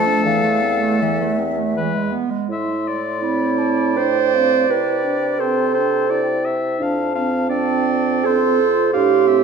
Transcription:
0.00 0.26 F2 medium
0.00 1.47 A3 medium
0.00 1.47 A4 medium
0.00 0.23 A5 loud
0.06 0.24 D4 medium
0.25 2.17 E2 medium
0.25 0.44 E3 medium
0.25 1.04 F5 loud
0.43 0.64 A3 medium
0.62 0.82 C4 medium
0.81 1.03 A3 medium
1.02 1.22 E3 medium
1.02 2.14 E5 medium
1.21 1.40 A3 medium
1.38 1.59 C4 medium
1.58 1.76 A3 medium
1.76 1.96 E3 medium
1.76 2.14 G#3 medium
1.76 2.15 B4 medium
1.95 2.13 G#3 medium
2.12 2.32 B3 medium
2.31 2.49 G#3 medium
2.49 4.65 A2 medium
2.49 3.17 E4 medium
2.49 2.89 E5 medium
2.49 3.25 C6 medium
2.88 5.42 D5 medium
3.21 3.97 C4 medium
3.21 3.99 E4 medium
3.21 3.60 B5 medium
3.58 3.98 A5 medium
3.95 4.35 D4 medium
3.95 4.72 C5 loud
3.95 4.36 G5 medium
4.33 4.69 C4 medium
4.33 4.68 F5 medium
4.69 6.77 C3 medium
4.69 5.05 E4 medium
4.69 5.41 B4 medium
4.69 6.77 G5 medium
5.04 5.41 D4 medium
5.39 5.77 C4 medium
5.39 6.45 A4 medium
5.39 5.74 C5 medium
5.75 6.09 D4 medium
5.75 6.12 C5 medium
6.10 6.82 E4 medium
6.10 6.47 D5 medium
6.45 6.84 E5 medium
6.80 8.90 F2 medium
6.80 7.16 D4 medium
6.80 7.15 F5 medium
6.80 7.50 A5 medium
7.15 7.50 C4 medium
7.15 7.49 F5 medium
7.48 8.26 C4 medium
7.48 8.27 D4 medium
7.48 8.27 D5 medium
7.48 8.28 A5 medium
8.25 8.62 C4 medium
8.25 8.92 A4 loud
8.25 8.93 C5 medium
8.25 8.95 C6 medium
8.61 8.94 F4 medium
8.93 9.44 A2 medium
8.93 9.28 D4 medium
8.93 9.44 G4 medium
8.93 9.29 F5 medium
8.93 9.37 C6 medium
9.26 9.44 C4 medium
9.26 9.44 E5 medium

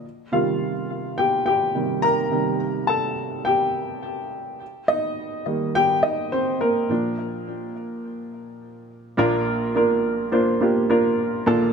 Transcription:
0.32 0.70 C3 soft
0.32 0.70 D#3 soft
0.32 0.71 G3 medium
0.32 1.15 F4 medium
0.32 1.21 F5 medium
1.18 1.45 G4 medium
1.18 1.44 G5 medium
1.46 2.00 G4 medium
1.46 2.05 G5 medium
1.75 2.01 C3 soft
1.75 2.01 D#3 soft
1.75 2.01 G3 medium
2.02 2.57 A#4 medium
2.02 2.56 A#5 loud
2.32 4.57 C3 medium
2.32 4.57 D#3 medium
2.32 4.57 G3 medium
2.87 3.43 A4 medium
2.87 3.47 A5 medium
3.45 4.29 G4 medium
3.45 4.28 G5 medium
4.88 5.72 D#4 medium
4.88 5.71 D#5 loud
5.46 6.28 D#3 soft
5.46 6.29 G3 soft
5.46 6.29 A#3 medium
5.75 6.02 G4 medium
5.75 6.05 G5 loud
6.03 6.30 D#4 medium
6.03 6.33 D#5 medium
6.32 6.59 C4 medium
6.32 6.62 C5 medium
6.61 7.72 A#3 medium
6.61 7.71 A#4 medium
6.89 9.14 A#2 medium
6.89 9.15 F3 medium
6.89 9.15 D4 medium
9.17 11.43 A#1 medium
9.17 11.43 A#2 medium
9.17 9.68 A#3 medium
9.17 9.68 D4 medium
9.17 9.69 F4 medium
9.17 9.69 A#4 loud
9.75 10.26 A#3 medium
9.75 10.26 D4 medium
9.75 10.26 F4 medium
9.75 10.27 A#4 medium
10.32 10.57 A#3 medium
10.32 10.58 D4 medium
10.32 10.58 F4 medium
10.32 10.58 C5 medium
10.61 10.86 A#3 medium
10.61 10.86 D4 medium
10.61 10.87 F4 medium
10.61 10.87 G4 medium
10.89 11.40 A#3 medium
10.89 11.40 D4 medium
10.89 11.40 F4 medium
10.89 11.41 A#4 medium
11.46 11.73 A#1 medium
11.46 11.73 A#2 medium
11.46 11.73 A#3 loud
11.46 11.73 D4 medium
11.46 11.73 F4 medium
11.46 11.73 A4 loud

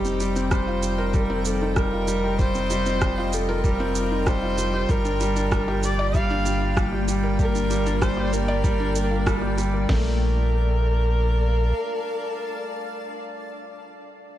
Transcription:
0.00 4.86 F1 medium
0.00 0.97 D#4 medium
0.00 0.48 G4 medium
0.00 1.89 C5 medium
0.00 9.89 G5 medium
0.05 0.14 C4 medium
0.05 shaker soft
0.17 0.35 G3 loud
0.17 9.89 F4 medium
0.17 shaker medium
0.36 0.51 C4 loud
0.36 4.89 D#5 medium
0.36 shaker soft
0.51 0.67 G3 loud
0.51 1.16 C5 medium
0.51 kick loud
0.51 cross-stick medium
0.51 shaker soft
0.67 0.82 F4 medium
0.83 0.92 G3 medium
0.83 shaker medium
0.98 1.13 A#4 loud
1.14 1.29 G3 loud
1.14 1.47 A#4 medium
1.14 kick loud
1.14 shaker soft
1.30 1.39 C4 loud
1.45 1.60 G3 medium
1.45 1.79 A4 medium
1.45 shaker medium
1.62 1.76 D#4 medium
1.76 1.92 G3 medium
1.76 2.39 A#4 loud
1.76 kick loud
1.76 cross-stick medium
1.76 shaker soft
1.93 2.01 F4 medium
2.08 2.23 G3 loud
2.08 shaker medium
2.24 2.33 G4 medium
2.39 2.54 G3 loud
2.39 3.35 C5 loud
2.39 kick loud
2.39 shaker soft
2.55 2.64 C4 medium
2.55 shaker soft
2.70 2.85 G3 loud
2.70 shaker medium
2.86 3.01 C4 loud
2.86 shaker soft
3.02 3.17 G3 loud
3.02 kick loud
3.02 cross-stick medium
3.02 shaker soft
3.18 3.32 F4 loud
3.33 3.42 G3 medium
3.33 3.65 A4 medium
3.33 shaker medium
3.49 3.64 A#4 loud
3.64 3.79 G3 loud
3.64 4.29 A#4 loud
3.64 kick loud
3.64 shaker soft
3.80 3.89 C4 loud
3.95 4.10 G3 medium
3.95 shaker medium
4.11 4.26 D#4 medium
4.26 4.41 G3 loud
4.26 4.92 C5 loud
4.26 kick loud
4.26 cross-stick medium
4.26 shaker soft
4.42 4.51 F4 medium
4.58 4.73 G3 loud
4.58 shaker medium
4.74 4.83 G4 medium
4.89 9.86 G1 medium
4.89 5.04 G3 loud
4.89 9.89 A#3 medium
4.89 5.86 A#4 loud
4.89 kick loud
4.89 shaker soft
5.05 5.14 D4 medium
5.05 shaker soft
5.20 5.35 G3 loud
5.20 shaker medium
5.36 5.51 D4 loud
5.36 shaker soft
5.45 9.89 D5 medium
5.52 5.67 G3 loud
5.52 kick loud
5.52 cross-stick loud
5.52 shaker soft
5.68 5.82 G4 loud
5.83 5.92 G3 medium
5.83 6.17 D5 loud
5.83 shaker medium
5.99 6.14 D5 loud
6.14 6.29 G3 loud
6.14 6.77 F5 loud
6.14 kick loud
6.14 shaker soft
6.30 6.39 D4 loud
6.46 6.60 G3 medium
6.46 shaker medium
6.61 6.76 F4 medium
6.76 6.91 G3 loud
6.76 kick loud
6.76 cross-stick loud
6.76 shaker soft
6.92 7.01 G4 medium
7.08 7.23 G3 loud
7.08 shaker medium
7.23 7.32 A#4 medium
7.39 7.54 G3 loud
7.39 8.04 A#4 loud
7.39 kick loud
7.39 shaker soft
7.55 7.64 D4 medium
7.55 shaker soft
7.70 7.85 G3 loud
7.70 shaker medium
7.86 8.01 D4 loud
7.86 shaker soft
8.01 8.16 G3 loud
8.01 8.35 C5 loud
8.01 kick loud
8.01 cross-stick loud
8.01 shaker soft
8.17 8.32 G4 loud
8.33 8.42 G3 medium
8.33 9.58 A#4 loud
8.33 shaker medium
8.48 8.63 D5 loud
8.64 8.79 G3 loud
8.64 kick loud
8.64 shaker soft
8.80 8.89 D4 loud
8.95 9.10 G3 medium
8.95 shaker medium
9.11 9.26 F4 medium
9.26 9.41 G3 loud
9.26 kick loud
9.26 cross-stick loud
9.26 shaker soft
9.42 9.51 G4 medium
9.58 9.73 G3 loud
9.58 shaker medium
9.73 9.82 A#4 medium
9.89 11.73 A#1 loud
9.89 10.18 A3 medium
9.89 13.15 A#4 loud
9.89 kick loud
9.89 snare loud
9.89 open hi-hat medium
9.99 13.15 A5 medium
10.08 13.15 D5 medium
10.17 13.15 F5 medium

